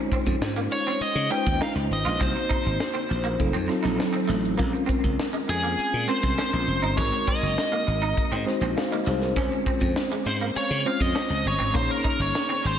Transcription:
Already playing: G#3 C#4 D#4 F4 C5
0.12 C4, kick, closed hi-hat
0.26 F2, kick, closed hi-hat
0.41 G#2, snare
0.56 A#3, closed hi-hat
0.71 C#5, muted clean electric guitar stroke, closed hi-hat
0.87 C4, snare, closed hi-hat
1.00 D#5, muted slap bass stroke, closed hi-hat
1.15 C#3, closed hi-hat
1.30 G#3 C#4 D#4 F4 B4 G5, closed hi-hat
1.38 C5
1.46 D#2, kick, snare, closed hi-hat
1.61 D#4 F5, snare
1.75 C#2, muted clean electric guitar stroke, closed hi-hat
1.90 G#1 D#5, closed hi-hat
2.05 A#1 F4, snare, closed hi-hat
2.20 C2 A#3 C4 D#4 F#4 C5, kick, closed hi-hat
2.36 muted clean electric guitar stroke, closed hi-hat
2.49 D#4, kick, closed hi-hat
2.65 G#1, closed hi-hat
2.80 snare
2.94 C4, closed hi-hat
3.09 A#1, muted clean electric guitar stroke, closed hi-hat
3.24 A#3, closed hi-hat
3.39 F1 F#3 C4 D#4 F4 A4, kick, closed hi-hat
3.53 F2 C4, closed hi-hat
3.68 F#3 C4 D#4 F4 A4, muted clean electric guitar stroke, snare, closed hi-hat
3.83 A#1 D#4, snare, closed hi-hat
3.98 muted clean electric guitar stroke, snare
4.13 C4, closed hi-hat
4.28 A1 A3, closed hi-hat
4.45 closed hi-hat
4.57 A#1 G#3 A#3 C4 C#4 F4 A#4, kick, closed hi-hat
4.73 muted clean electric guitar stroke, closed hi-hat
4.86 C4, kick, closed hi-hat
5.04 C#2, kick, closed hi-hat
5.19 snare
5.33 G#3, closed hi-hat
5.48 F2 G#4, muted clean electric guitar stroke, closed hi-hat
5.63 A#3, closed hi-hat
5.78 muted slap bass stroke, closed hi-hat
5.93 A#2, closed hi-hat
6.07 G#3 C4 C#4 F4 A#4 C5, closed hi-hat
6.23 C2, kick, snare, closed hi-hat
6.38 C#4, snare
6.53 A#1, muted clean electric guitar stroke, closed hi-hat
6.67 F1, closed hi-hat
6.82 G1 D#4, closed hi-hat
6.97 G#1 G#3 C4 D#4 F#4 A#4 C#5, kick, closed hi-hat
7.12 muted clean electric guitar stroke, closed hi-hat
7.27 C4 D#5, kick, closed hi-hat
7.42 F#1, closed hi-hat
7.58 snare
7.72 A#3, closed hi-hat
7.87 G#1, muted clean electric guitar stroke, closed hi-hat
8.02 D#4, closed hi-hat
8.17 kick, closed hi-hat
8.31 G#2 C4, closed hi-hat
8.46 G#3 C4 D#4 F#4 C5, muted clean electric guitar stroke, snare, closed hi-hat
8.61 A#1 C4, closed hi-hat
8.76 F5, muted clean electric guitar stroke, snare
8.92 A#3 C5 D#5, closed hi-hat
9.06 C2 F#3 G#4 C5, closed hi-hat
9.22 F#4 A#4, snare, closed hi-hat
9.36 C#2 G#3 C4 C#4 F4 C5, kick, closed hi-hat
9.52 muted clean electric guitar stroke, closed hi-hat
9.66 C4, kick, closed hi-hat
9.80 F2, kick, closed hi-hat
9.96 snare
10.10 G#3, closed hi-hat
10.26 G#2 C5, muted clean electric guitar stroke, closed hi-hat
10.41 A#3, closed hi-hat
10.55 C#5, muted slap bass stroke, closed hi-hat
10.70 C#3, closed hi-hat
10.85 G#3 C4 C#4 F4 C5 F5, closed hi-hat
11.00 F2 D#5, kick, closed hi-hat
11.15 C#4, snare
11.30 C#2, muted clean electric guitar stroke, closed hi-hat
11.45 G1 C#5, closed hi-hat
11.59 G#1 C4, closed hi-hat
11.73 A#1 A#3 C#4 D#4 G#4 C5 C#5, kick, closed hi-hat
11.89 A#4, muted clean electric guitar stroke, closed hi-hat
12.04 D#4, kick, closed hi-hat
12.19 G1 C#5, closed hi-hat
12.35 snare
12.49 C4, closed hi-hat
12.63 G#1 C5, muted clean electric guitar stroke, closed hi-hat

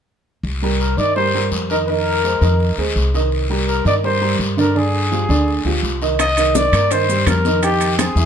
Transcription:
0.43 C2, long guiro
0.62 G3 G4 A#4
0.80 A#4, short guiro
0.97 G2 D#3 D#4 D5 D#5, short guiro
1.16 G3 G4 A#4 C5, long guiro
1.34 G3 G4 A#4
1.51 F2, short guiro
1.70 D#3 D#4 A#4 D#5, short guiro
1.88 D#3 D#4 A#4 D#5, long guiro
2.24 G#3 G#4 C5, short guiro
2.41 F2 D#3 D#4 D#5, short guiro
2.60 long guiro
2.78 D2 G#3 G#4 C5
2.95 C2, short guiro
3.14 D#3 D#4 D#5, short guiro
3.32 long guiro
3.50 G3 G4 A#4
3.68 A#4, short guiro
3.85 G2 D#3 D#4 D5 D#5, short guiro
4.04 G3 G4 A#4 C5, long guiro
4.21 G3 G4 A#4
4.39 G2, short guiro
4.57 D3 D4 A#4 D5, short guiro
4.75 D3 D4 G#4 D5, long guiro
5.11 F3 F4 G4, short guiro
5.29 D2 D3 D4 D5, short guiro
5.48 long guiro
5.65 D2 F3 F4 G4
5.83 C2, short guiro
6.01 D#3 D#4 D#5, short guiro
6.19 D#5, high bongo, high conga, high timbale, long guiro, maracas
6.37 D#3 D#4, high bongo, high conga, high timbale, maracas
6.55 D5, high bongo, high conga, short guiro, maracas
6.73 G2 A#3 A#4, high bongo, high conga, high timbale, short guiro, maracas
6.91 D#3 D#4 C5, high bongo, high conga, high timbale, long guiro, maracas
7.09 G3 G4, high conga, maracas
7.26 F2 A#4, high bongo, low bongo, high conga, high timbale, short guiro, maracas
7.45 D#3 D#4, high bongo, high conga, short guiro, maracas
7.63 D#3 D#4 G4, high bongo, high conga, high timbale, long guiro, maracas
7.81 high conga, high timbale, maracas
7.98 C4 G#4 C5, high bongo, high conga, high timbale, short guiro, maracas
8.16 E2 E4 E5, high bongo, high conga, short guiro, maracas

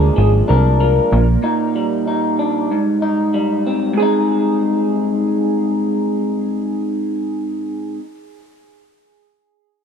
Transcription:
Already playing: D2 A#2 F3 G#3 D4 G#4
0.16 G#1 F3 G#4
0.48 C2 D4 A#4
0.80 F3 A#4
1.12 A#1 A#2
1.43 A#2 D#4
1.75 G3
2.07 D#4
2.39 D4
2.71 G#2
3.02 D#4
3.34 G3
3.67 C4
3.94 G#2
3.98 C4 G#4
4.02 D#4

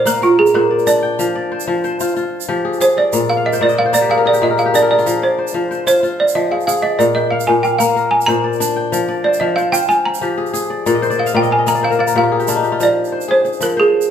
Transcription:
Already playing: A#2 D5 G5
0.05 A#3 A#4 F5, shaker
0.22 F4 A#4, shaker
0.39 G#4
0.46 shaker
0.54 A#2 A#4 C5
0.71 D5
0.79 shaker
0.87 D4 D5, shaker
1.03 G5
1.19 F3, shaker
1.35 D5
1.52 C5
1.60 shaker
1.68 F3
1.84 C5, shaker
2.00 F4 C5, shaker
2.08 shaker
2.16 F4, shaker
2.41 shaker
2.48 F3 G4
2.65 G#4
2.73 shaker
2.81 G#4 C5, shaker
2.97 D5
3.13 A#2, shaker
3.30 F5
3.37 F5
3.45 D5 D#5
3.53 C5, shaker
3.61 A#2 D5
3.69 D#5, shaker
3.77 D5 F5
3.86 C5
3.93 A#3 D5, shaker
4.01 G4
4.09 G#4 F5
4.18 A#4
4.26 G#4 D5
4.33 G4, shaker
4.42 A#2 G#4 D#5
4.50 A#4
4.58 G#4 F5, shaker
4.66 G4
4.74 D4 G#4 D5, shaker
4.82 A#4
4.91 G#4 D5
4.98 F4, shaker
5.06 F3, shaker
5.22 C5 D5
5.38 C5
5.47 shaker
5.54 F3
5.71 C5, shaker
5.87 F4 C5, shaker
6.03 F4, shaker
6.20 D5
6.28 shaker
6.35 F3 D#5
6.51 G#4 F5
6.60 shaker
6.67 G#4 F5, shaker
6.77 shaker
6.82 D5 D#5
6.99 A#2 D5, shaker
7.15 D#5 G5
7.31 F5
7.40 shaker
7.47 A#2 G#5
7.63 F5 G5, shaker
7.79 A#3 F5, shaker
7.96 A#4, shaker
8.11 G#5
8.21 shaker
8.26 A#2 C5 A#5, shaker
8.44 D5
8.53 shaker
8.60 D4, shaker
8.76 G5
8.92 F3, shaker
9.09 D5
9.24 C5 D5
9.33 shaker
9.40 F3 D#5
9.56 C5 F5, shaker
9.72 F4 C5 G5, shaker
9.88 F4 G#5, shaker
10.05 A#5
10.14 shaker
10.22 F3 G4
10.38 G#4
10.46 shaker
10.54 G#4, shaker
10.70 D5
10.86 A#2 D5, shaker
10.94 D#5
11.02 C5, shaker
11.10 D5, shaker
11.18 D#5 F5
11.26 F5, shaker
11.34 A#2 D5 G5
11.42 D#5, shaker
11.51 F5 G#5
11.59 D#5
11.67 A#3 D#5 A#5, shaker
11.75 D5, shaker
11.83 C5 F5
11.90 A#4, shaker
11.99 D5 F5
12.07 A#4, shaker
12.15 A#2 G4 F5
12.23 F4
12.32 G#4
12.40 G4, shaker
12.48 D4 F4, shaker
12.56 D#4
12.63 G4, shaker
12.72 F4
12.80 F3 D5, shaker
13.05 shaker
13.12 C5
13.21 shaker
13.28 G#4 C5
13.45 G#4, shaker
13.53 shaker
13.61 F3 A#4, shaker
13.77 G#4 C5
14.01 shaker

